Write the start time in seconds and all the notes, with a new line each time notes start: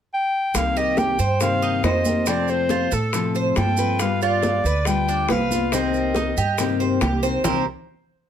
0.14 G5
0.54 C2 C3 D#3 A#3 C4 G4 F5, high bongo, high conga, maracas
0.76 G4 D#5, high bongo, high conga, maracas
0.97 G5, high bongo, high conga, maracas
1.19 G2 C5, muted steel-string acoustic guitar stroke, high bongo, maracas
1.40 C3 D#3 A#3 C4 G4 F5, high bongo, high conga, maracas
1.62 D#4, high conga, maracas
1.83 F2 D#3 A#3 C4 G4 C5 D#5, high bongo, low bongo, high conga, maracas
2.05 D#3 A#3 C4 G4, high bongo, high conga, maracas
2.26 C3 F3 A3 C4 F4 D5, high bongo, high conga, maracas
2.48 C5, high bongo, high conga, maracas
2.69 F4, high bongo, high conga, maracas
2.91 A2 A4, muted steel-string acoustic guitar stroke, maracas
3.13 C3 F3 A3 C4 F4, high bongo, high conga, maracas
3.35 C5, high bongo, high conga, maracas
3.56 G2 F3 A3 C4 F4 A4 G5, high bongo, low bongo, high conga, maracas
3.77 F3 A3 C4 F4 B4, high bongo, maracas
3.99 G3 B3 F4 F5, high bongo, high conga, maracas
4.21 F4 D5, high bongo, high conga, maracas
4.43 high bongo, high conga, maracas
4.64 D2 B4, muted steel-string acoustic guitar stroke, high bongo, high conga, maracas
4.85 G3 B3 F4 G5, high bongo, high conga, maracas
5.09 D4, high conga, maracas
5.29 C2 G3 B3 F4 B4 F5, high bongo, low bongo, high conga, maracas
5.51 B3 F4, high bongo, high conga, maracas
5.72 C3 D#3 A#3 C4 G4 D#5, high bongo, maracas
5.93 high bongo, high conga, maracas
6.14 D#4, high bongo, high conga, maracas
6.37 G2 G4, muted steel-string acoustic guitar stroke, high conga, maracas
6.58 C3 D#3 A#3 C4 G4, high bongo, high conga, maracas
6.80 C5, high bongo, high conga, maracas
7.01 C2 A#3 G4, high bongo, low bongo, high conga, maracas
7.22 D#3 A#3 C4 G4 C5, high bongo, maracas
7.44 C2 C3 D#3 A#3 C4 G4 A#4 C5, low bongo, low conga, maracas